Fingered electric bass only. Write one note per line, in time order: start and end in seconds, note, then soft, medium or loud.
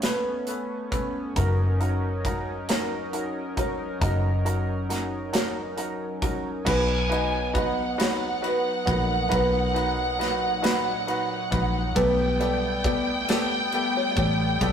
0.00 1.32 A1 medium
1.36 3.98 F#1 medium
4.01 6.62 F#1 medium
6.66 8.83 B1 medium
8.87 9.29 A#1 medium
9.31 11.48 B1 loud
11.52 11.94 A#1 medium
11.96 14.13 B1 loud
14.16 14.58 A1 medium
14.61 14.72 B1 loud